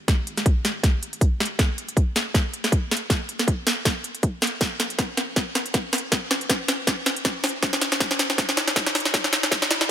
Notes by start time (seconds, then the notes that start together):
0.08 G#1, kick, snare, closed hi-hat
0.27 closed hi-hat
0.37 snare, closed hi-hat
0.46 kick, closed hi-hat
0.65 snare, closed hi-hat
0.83 kick, snare, closed hi-hat
1.03 closed hi-hat
1.13 closed hi-hat
1.21 kick, closed hi-hat
1.40 snare, closed hi-hat
1.46 closed hi-hat
1.59 kick, snare, closed hi-hat
1.78 closed hi-hat
1.89 closed hi-hat
1.97 kick, closed hi-hat
2.16 snare, closed hi-hat
2.34 kick, snare, closed hi-hat
2.54 closed hi-hat
2.64 snare, closed hi-hat
2.72 kick, closed hi-hat
2.91 snare, closed hi-hat
2.97 closed hi-hat
3.10 kick, snare, closed hi-hat
3.29 closed hi-hat
3.39 snare, closed hi-hat
3.48 kick, closed hi-hat
3.67 snare, closed hi-hat
3.85 kick, snare, closed hi-hat
4.04 closed hi-hat
4.15 closed hi-hat
4.23 kick, closed hi-hat
4.42 snare, closed hi-hat
4.47 closed hi-hat
4.61 A#1, kick, snare, closed hi-hat
4.80 snare, closed hi-hat
4.90 closed hi-hat
4.99 kick, snare, closed hi-hat
5.17 snare, closed hi-hat
5.36 kick, snare, closed hi-hat
5.55 snare, closed hi-hat
5.66 closed hi-hat
5.74 kick, snare, closed hi-hat
5.93 snare, open hi-hat
5.98 closed hi-hat
6.12 A#1, kick, snare, closed hi-hat
6.31 snare, closed hi-hat
6.41 closed hi-hat
6.49 kick, snare, closed hi-hat
6.68 snare, closed hi-hat
6.87 kick, snare, closed hi-hat
7.06 snare, closed hi-hat
7.16 closed hi-hat
7.25 kick, snare, closed hi-hat
7.44 F1, snare, open hi-hat
7.49 closed hi-hat
7.63 kick, snare, closed hi-hat
7.73 snare
7.81 snare, closed hi-hat
7.92 snare, closed hi-hat
8.00 kick, snare, closed hi-hat
8.11 snare
8.19 snare, closed hi-hat
8.30 snare
8.38 kick, snare, closed hi-hat
8.49 snare
8.57 snare, closed hi-hat
8.68 snare, closed hi-hat
8.76 kick, snare, closed hi-hat
8.86 snare
8.95 F1, snare, open hi-hat
9.00 closed hi-hat
9.05 snare
9.14 kick, snare, closed hi-hat
9.24 snare
9.33 snare, closed hi-hat
9.43 snare, closed hi-hat
9.51 kick, snare, closed hi-hat
9.62 snare
9.71 snare, closed hi-hat
9.81 snare